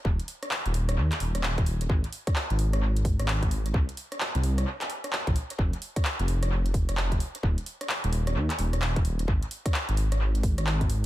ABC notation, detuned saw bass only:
X:1
M:4/4
L:1/16
Q:"Swing 16ths" 1/4=130
K:Ab
V:1 name="Detuned saw bass" clef=bass
E,,, z4 E,,,3 E,, z E,,,4 E,,,2 | A,,, z4 A,,,6 A,,,4- A,,, | C,, z4 C,,3 z4 z B,,, z2 | F,,, z4 F,,,6 F,,,3 z2 |
E,,, z4 E,,,3 E,, z E,,,4 E,,,2 | A,,, z4 A,,,6 A,,,4- A,,, |]